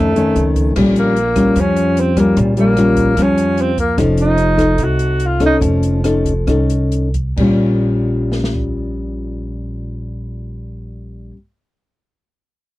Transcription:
Already playing: F2 D#3 A3 C#4
0.16 D#3 A3 C#4, closed hi-hat
0.36 C#2, closed hi-hat
0.56 kick, closed hi-hat
0.76 A#1 A#2 G3 C#4 F4, kick, cross-stick, crash
0.96 A#3, closed hi-hat
1.16 closed hi-hat
1.36 G3 C#4 F4, kick, cross-stick, closed hi-hat
1.55 F2 F3, kick, closed hi-hat
1.60 C#4
1.77 closed hi-hat
1.97 C4, closed hi-hat
2.16 G3 A#3 C#4 F4, kick, cross-stick, closed hi-hat
2.37 A#1 A#2, kick, closed hi-hat
2.57 G3 A#3 C#4 F4, closed hi-hat
2.77 G3 C#4 F4, cross-stick, closed hi-hat
2.97 kick, closed hi-hat
3.17 F2 F3 G3 C#4 F4, kick, cross-stick, closed hi-hat
3.22 C#4
3.38 closed hi-hat
3.58 C4, closed hi-hat
3.78 A#3, kick, closed hi-hat
3.97 F1 F3 C#4 D#4 A4, kick, cross-stick, closed hi-hat
4.17 D#4, closed hi-hat
4.38 closed hi-hat
4.57 D#4 A4, kick, cross-stick, closed hi-hat
4.78 C2 C3, kick, closed hi-hat
4.84 F#4
4.99 closed hi-hat
5.20 closed hi-hat
5.26 F4
5.40 C#4 D#4 A4, kick, cross-stick, closed hi-hat
5.46 D#4
5.61 F1 F3, kick, closed hi-hat
5.83 closed hi-hat
6.04 C#4 D#4 A4, cross-stick, closed hi-hat
6.25 kick, closed hi-hat
6.47 C2 C#4 D#4 A4, kick, cross-stick, closed hi-hat
6.70 closed hi-hat
6.92 closed hi-hat
7.14 kick, closed hi-hat
7.36 A#1 A#2 G3, kick, crash
7.41 C#4 F4
8.32 snare
8.44 snare
8.56 kick

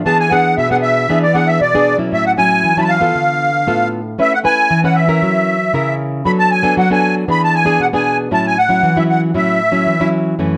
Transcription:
0.05 E3 B3 D4 G#4 A5
0.20 G#5
0.31 B3 D4 G#4 F#5
0.57 B2 E5
0.71 B3 D4 G#4 F#5
0.82 E5
1.09 E3 B3 D4 G#4
1.23 D5
1.34 B3 D4 G#4 F#5
1.46 E5
1.61 B2 D5
1.74 B3 D4 G#4
1.98 F#3 C#4 E4
2.12 A2 E5
2.26 F#5
2.38 F#3 C#4 E4 G#5
2.64 E3
2.77 F#3 C#4 E4 A5 B5
2.84 A5
2.89 F5
3.01 B3 F4 A4
3.15 D3
3.67 A2 B3 F4 A4
4.18 A3 C#4 E4 B4 E5
4.34 F#5
4.44 C#4 E4 B4 G#5
4.71 E3
4.84 C#4 E4 B4 F#5
4.95 E5
5.08 C#4 E4 A#4
5.22 F#3
5.74 C#3 C#4 E4 A#4
6.25 F#3 B3 D4 A4 B5
6.39 A5
6.51 G#5
6.63 B3 D4 A4
6.77 F#3 F#5
6.91 B3 D4 A4 G#5
7.28 E3 B3 D4 G#4 B5
7.44 A5
7.55 G#5
7.65 B3 D4 G#4
7.80 B2 F#5
7.93 B3 D4 G#4 G#5
8.31 A2 F#3 C#4 E4 A5
8.47 G#5
8.58 F#5
8.69 F#3 C#4 E4
8.83 E3
8.96 F#3 C#4 E4 E5
9.10 F#5
9.34 A2 F#3 C#4 E4 E5
9.72 F#3 C#4 E4
9.86 E3
10.00 F#3 C#4 E4
10.39 F#2 E3 A3 C#4

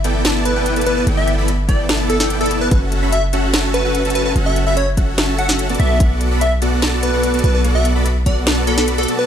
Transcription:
Already playing: G1
0.04 B3 E4 A4 D5 G5, closed hi-hat
0.25 B3 E4 A4 D5 A5, snare, closed hi-hat
0.45 B4, closed hi-hat
0.56 B3 E4 A4 D5 G5
0.66 closed hi-hat
0.76 B3 E4 A4 D5 A5, closed hi-hat
0.81 closed hi-hat
0.86 B4, closed hi-hat
0.97 B4
1.07 G1 B3 E4 A4 D5 G5, closed hi-hat
1.17 E5
1.28 closed hi-hat
1.38 B3 E4 A4 D5 B5
1.48 closed hi-hat
1.69 B3 E4 A4 D5 G5, kick, closed hi-hat
1.89 B3 E4 A4 D5 A5, snare, closed hi-hat
2.10 A4, closed hi-hat
2.20 B3 E4 A4 D5 G5, snare
2.30 closed hi-hat
2.41 B3 E4 A4 D5 A5, closed hi-hat
2.46 closed hi-hat
2.51 closed hi-hat
2.61 B4
2.71 F#1 C#4 F#4 A4 B4 E5 F#5, kick, closed hi-hat
2.92 closed hi-hat
3.02 C#4 F#4 A4 E5 B5
3.12 E5, closed hi-hat
3.33 C#4 F#4 A4 E5 F#5, closed hi-hat
3.54 C#4 F#4 A4 E5 A5, snare, closed hi-hat
3.74 B4, closed hi-hat
3.85 C#4 F#4 A4 E5 F#5
3.95 closed hi-hat
4.05 C#4 F#4 A4 E5 A5, closed hi-hat
4.10 closed hi-hat
4.15 B4, closed hi-hat
4.26 B4
4.36 F#1 C#4 F#4 A4 E5 F#5, closed hi-hat
4.46 E5
4.56 closed hi-hat
4.67 C#4 F#4 A4 E5 B5
4.77 C#5, closed hi-hat
4.97 C#4 F#4 A4 E5 F#5, kick, closed hi-hat
5.18 C#4 F#4 A4 E5 A5, snare, closed hi-hat
5.39 F#5, closed hi-hat
5.49 C#4 F#4 A4 E5 F#5, snare
5.59 closed hi-hat
5.69 B3 F#4 A4 D5 A5, closed hi-hat
5.75 closed hi-hat
5.80 B1 E5, closed hi-hat
6.00 B3 F#4 A4 D5 F#5, kick, closed hi-hat
6.21 closed hi-hat
6.31 B3 F#4 A4 D5 B5
6.41 E5, closed hi-hat
6.62 B3 F#4 A4 D5 F#5, closed hi-hat
6.82 B3 F#4 A4 D5 A5, snare, closed hi-hat
7.03 B4, closed hi-hat
7.13 B3 F#4 A4 D5 F#5
7.23 closed hi-hat
7.34 B3 F#4 A4 D5 A5, closed hi-hat
7.39 closed hi-hat
7.44 B1 B4, closed hi-hat
7.55 B4
7.64 B3 F#4 A4 D5 F#5, closed hi-hat
7.75 E5
7.85 closed hi-hat
7.95 B3 F#4 A4 D5 B5
8.06 closed hi-hat
8.26 B3 F#4 A4 D5 F#5, kick, closed hi-hat
8.47 B3 F#4 A4 D5 A5, snare, closed hi-hat
8.67 B3 F#4 A4 D5 B5, closed hi-hat
8.78 A4, snare
8.88 closed hi-hat
8.98 B3 F#4 A4 D5 A5, closed hi-hat
9.03 closed hi-hat
9.08 B3 F#4 A4 D5 A5, closed hi-hat
9.19 B4

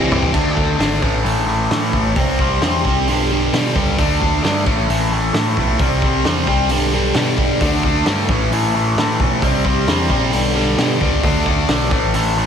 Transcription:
Already playing: C3 E3 G3 C4 E4
0.11 C2 G3 C4 E4, mid tom
0.22 floor tom
0.34 D2 D3 A3 D4, kick, crash
0.56 D3 A3 D4, kick
0.79 G#1 D3 A3 D4, snare, open hi-hat
1.02 A1 A2 E3 A3, kick
1.24 A1 A2 E3 A3, open hi-hat
1.47 A2 E3 A3
1.70 A2 E3 A3, snare, open hi-hat
1.93 A1 A2 E3 A3, kick
2.16 C2 C3 G3 C4, kick, open hi-hat
2.39 C3 G3 C4, kick
2.61 E2 C3 G3 C4, snare, open hi-hat
2.85 C2 C3 G3 C4, kick
3.07 B1 G2 D3 G3, open hi-hat
3.32 G2 D3 G3
3.53 G2 B2 D3 G3, snare, open hi-hat
3.75 C#2 G2 D3 G3, kick
3.98 D2 D3 A3 D4, kick, open hi-hat
4.21 D3 A3 D4, kick
4.43 G2 D3 A3 D4, snare, open hi-hat
4.66 A1 A2 E3 A3, kick
4.89 A1 A2 E3 A3, open hi-hat
5.12 A2 E3 A3
5.33 A2 E3 A3, snare, open hi-hat
5.57 B1 A2 E3 A3, kick
5.79 C2 C3 G3 C4, kick, open hi-hat
6.02 C3 G3 C4, kick
6.24 E2 C3 G3 C4, snare, open hi-hat
6.47 C2 C3 G3 C4, kick
6.68 B1 G2 D3 G3, open hi-hat
6.94 G2 D3 G3
7.14 G2 B2 D3 G3, snare, open hi-hat
7.37 B1 G2 D3 G3, kick
7.61 D2 D3 A3 D4, kick, open hi-hat
7.83 D3 A3 D4, kick
8.06 G2 D3 A3 D4, snare, open hi-hat
8.28 A1 A2 E3 A3, kick
8.50 A1 A2 E3 A3, open hi-hat
8.75 A2 E3 A3
8.96 A2 E3 A3, snare, open hi-hat
9.19 B1 A2 E3 A3, kick
9.42 C2 C3 G3 C4, kick, open hi-hat
9.65 C3 G3 C4, kick
9.87 E2 C3 G3 C4, snare, open hi-hat
10.09 A#1 C3 G3 C4, kick
10.33 B1 G2 D3 G3, open hi-hat
10.55 G2 D3 G3
10.77 G2 B2 D3 G3, snare, open hi-hat
11.01 C#2 G2 D3 G3, kick
11.23 D2 D3 A3 D4, kick, open hi-hat
11.46 D3 A3 D4, kick
11.68 B1 D3 A3 D4, snare, open hi-hat
11.91 A1 A2 E3 A3, kick
12.14 A1 A2 E3 A3, open hi-hat
12.38 A2 E3 A3

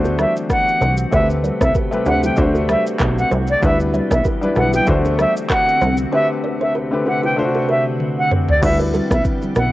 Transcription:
Already playing: D2 D3 A3 C4 D4 F#4 C5
0.05 F#4 A4, shaker
0.19 G4 B4 E5, cross-stick, high conga, shaker
0.37 shaker
0.50 F#5, kick, cross-stick, shaker
0.68 shaker
0.81 C2 A4 C5, high conga, shaker
0.97 shaker
1.11 D2 C3 A3 B3 G4 A4 B4 C5 E5, kick, low conga, shaker
1.19 C4
1.30 shaker
1.44 B4 D5, high conga, shaker
1.61 C2 A4 C5 E5, kick, cross-stick, shaker
1.75 G4 B4, kick, shaker
1.91 A3 C4 G4 B4, high conga, shaker
2.05 D2 A3 C4 F#4 G4 A4 B4 F#5, low conga, shaker
2.23 E4 G4 G5, high conga, shaker
2.36 D2 D3 A3 C4 D4 F#4 C5, kick, low conga, shaker
2.55 F#4 A4, shaker
2.69 G4 B4 E5, cross-stick, high conga, shaker
2.87 shaker
3.00 B1, kick, cross-stick, clap, shaker
3.18 F#5, shaker
3.31 C2 A4 C5, high conga, shaker
3.47 D5, shaker
3.61 D2 E3 G3 B3 D4 E4 G4 B4 D5 E5, kick, low conga, shaker
3.80 shaker
3.94 C5 E5, high conga, shaker
4.11 B1 B4 D5 E5, kick, cross-stick, shaker
4.24 G4 B4, kick, shaker
4.41 G3 D4 E4 B4, high conga, shaker
4.55 B1 G3 D4 E4 F#4 A4 B4 F#5, cross-stick, low conga, shaker
4.73 E4 G4 G5, high conga, shaker
4.86 D2 D3 A3 C4 D4 F#4 C5, kick, low conga, shaker
5.05 F#4 A4, shaker
5.19 G4 B4 E5, cross-stick, high conga, shaker
5.37 shaker
5.50 F#5, kick, cross-stick, clap, shaker
5.68 shaker
5.81 C2 A4 C5, high conga, shaker
5.97 shaker
6.11 D2 C3 D3 A3 C4 G4 A4 B4 C5 E5
6.44 B4 D5
6.61 A4 C5 E5
6.75 G4 B4
6.91 D3 A3 C4 G4 B4
7.05 D3 A3 C4 F#4 G4 A4 B4 F#5
7.24 E4 G4 G5
7.36 D3 A3 C4 D4 F4 F#4 C5
7.45 F#4
7.55 F#4 A4
7.69 G4 B4 E5
8.00 high tom
8.19 F#5
8.31 A4 C5, mid tom
8.48 D5, floor tom
8.61 D2 E3 G3 B3 D4 E4 G4 B4 E5, kick, crash, low conga, shaker
8.80 G4 B4, shaker
8.94 F#4 A4, high conga, shaker
9.11 B1 E5, kick, cross-stick, shaker
9.25 kick, shaker
9.42 high conga, shaker
9.55 B1 G4 B4 F#5, cross-stick, low conga, shaker

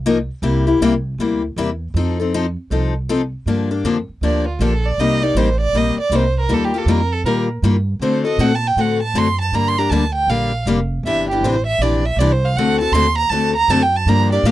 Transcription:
Already playing: C2
0.06 F3 A#3 D#4 F4 A#4
0.42 C2 C3 G3 A#3 E4 G4
0.67 A#3 E4 G4
0.80 C2 C3 G3 A#3 E4 G4
1.18 D2 C3 G3 A#3 E4 G4
1.56 E2 C3 G3 A#3 E4 G4
1.94 F2 F3 C4 D#4 A4
2.20 C4 D#4 A4
2.34 F3 C4 D#4 A4
2.70 C2 F3 C4 D#4 A4
3.09 F3 C4 D#4 A4
3.46 G2 D3 F3 A#3 D4 G4
3.71 A#3 D4 G4
3.84 F2 D3 F3 A#3 D4 G4
4.09 muted upright bass stroke
4.21 D2 D3 F3 A#3 D4 G4 D5
4.48 F4
4.59 A#1 D3 F3 A#3 D4 G4 A4
4.86 D5
4.97 C2 C3 G3 A#3 D#4 G4 D#5
5.22 A#3 D#4 G4 D5
5.35 A1 C3 G3 A#3 D#4 G4 C5
5.61 D5
5.72 A#1 C3 G3 A#3 D#4 G4
5.77 D#5
6.01 D5
6.10 C2 C3 G3 A#3 D#4 G4
6.16 C5
6.40 A#4
6.48 D#2 D#3 G3 A#3 F4 G4
6.54 A4
6.65 G4
6.74 A#3 F4 G4 A4
6.86 F2 D#3 G3 A#3 F4 G4
6.91 A#4
7.13 A4
7.24 A#2 D#3 G3 A#3 F4 G4 A#4
7.62 G2 D#3 G3 A#3 F4 G4
7.99 D3 A3 C4 F#4 A4 C5
8.25 C4 F#4 A4 D#5
8.38 A#2 D3 A3 C4 F#4 A4 F#5
8.55 A5
8.67 G5
8.76 A2 D3 A3 C4 F#4 A4
8.81 F#5
9.03 A5
9.14 F#2 D3 A3 C4 F#4 A4
9.18 C6
9.41 A5
9.52 G2 D3 G3 A#3 D4 G4 A#5
9.68 C6
9.78 A#3 D4 G4 A#5
9.90 D2 D3 G3 A#3 D4 G4 A5
10.15 G5
10.27 A#1 D3 G3 A#3 D4 G4 F5
10.66 F1 D3 G3 A#3 D4 G4
11.03 G1 C3 E3 D4 G4 E5
11.30 E3 D4 G4
11.41 A1 C3 E3 C5
11.45 D4 G4
11.67 E5
11.78 A#1 C3 E3 D5
11.83 D4 G4
12.05 E5
12.16 C2 D5
12.20 C3 E3 D4 G4
12.32 C5
12.45 F5
12.55 D2 D3 A3 C4 F#4 A4 F#5
12.81 C4 F#4 A4 A5
12.92 D#2 D3 A3 C4 F#4 A4 C6
13.18 A#5
13.30 D2 D3 A3 C4 F#4 A4 A5
13.56 A#5
13.68 F#2 D3 A3 C4 F#4 A4 A5
13.83 G5
13.96 A5
14.06 G2 D3 F3 A#3 D4 G4 A#5
14.32 A#3 D4 G4 D5
14.43 A2 D3 F3 A#3 D4 G4 F5

